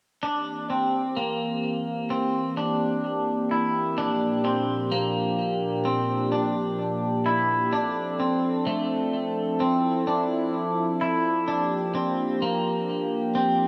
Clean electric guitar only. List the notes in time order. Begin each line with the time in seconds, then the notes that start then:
0.23 D4
0.70 C4
1.17 A#3
2.10 C4
2.57 D4
3.51 E4
3.98 D4
4.45 C4
4.92 A#3
5.85 C4
6.32 D4
7.26 E4
7.73 D4
8.20 C4
8.67 A3
9.60 C4
10.07 D4
11.01 E4
11.48 D4
11.95 C4
12.42 A#3
13.35 C4